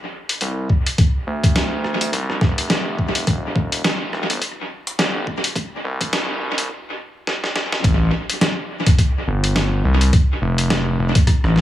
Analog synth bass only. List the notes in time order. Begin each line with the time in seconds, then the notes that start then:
0.41 C2
1.27 D2
2.13 C2
2.41 F1
3.27 E1
4.13 E1
4.30 G1
4.99 G1
5.85 C2
7.84 A1
9.28 G1
9.85 C2
10.42 F1
10.99 F1
11.44 A1